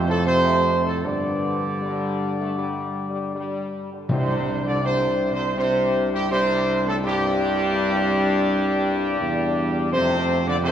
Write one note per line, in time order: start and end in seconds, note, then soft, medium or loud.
0.00 1.06 F2 loud
0.06 0.26 A2 loud
0.06 0.26 A4 loud
0.24 0.80 C3 loud
0.24 1.01 A3 loud
0.24 1.01 C4 medium
0.24 0.81 C5 loud
0.85 1.04 A2 medium
0.85 1.03 A4 loud
1.04 3.77 G2 medium
1.04 3.68 D3 loud
1.04 1.70 G3 medium
1.04 1.74 B3 medium
1.04 3.72 D5 loud
1.82 2.34 G3 loud
2.40 2.57 A3 loud
2.58 3.05 G3 medium
3.09 3.32 G3 medium
3.35 3.88 G3 loud
3.92 4.09 D3 medium
4.09 9.18 C2 loud
4.09 5.16 C3 loud
4.09 4.61 C3 loud
4.09 4.80 G3 loud
4.09 4.80 D4 medium
4.09 4.62 C5 loud
4.65 4.82 D3 loud
4.65 4.83 D5 loud
4.83 5.29 C3 loud
4.83 5.53 G3 loud
4.83 5.53 D4 loud
4.83 5.30 C5 loud
5.32 5.55 C3 loud
5.32 5.56 C5 loud
5.56 6.08 C3 loud
5.56 6.26 G3 medium
5.56 6.26 D4 medium
5.56 6.08 C5 loud
6.12 6.31 G2 loud
6.12 6.30 G4 loud
6.29 6.82 C3 loud
6.29 7.00 G3 loud
6.29 6.99 D4 loud
6.29 6.82 C5 loud
6.85 6.94 A2 loud
6.85 6.95 A4 loud
7.03 9.89 G2 loud
7.03 9.89 G3 loud
7.03 9.89 D4 loud
7.03 9.90 G4 loud
9.21 9.94 E2 loud
9.91 10.72 F2 loud
9.91 10.42 C3 loud
9.91 10.48 A3 loud
9.91 10.48 C4 loud
9.91 10.42 C5 loud
10.46 10.55 D3 loud
10.46 10.55 D5 loud
10.63 10.72 C3 loud
10.63 10.72 A3 loud
10.63 10.72 C4 loud
10.63 10.72 C5 loud